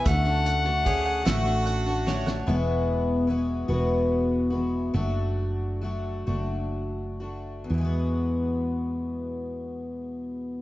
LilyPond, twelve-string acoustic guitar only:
\new Staff \with { instrumentName = "Twelve-string acoustic guitar" } { \time 6/8 \key e \mixolydian \tempo 4. = 47 <d a cis' fis'>16 <a cis' fis'>8 <a cis' fis'>16 <d a cis' fis'>8 <d a cis' fis'>16 <a cis' fis'>8 <a cis' fis'>16 <d a cis' fis'>8 | <e, b, e gis b fis'>4 <e gis b fis'>8 <e, b, e gis b fis'>4 <e gis b fis'>8 | <fis a d' fis'>4 <fis a d' fis'>8 <fis a d' fis'>4 <a d' fis'>8 | <e, b, e gis b fis'>2. | }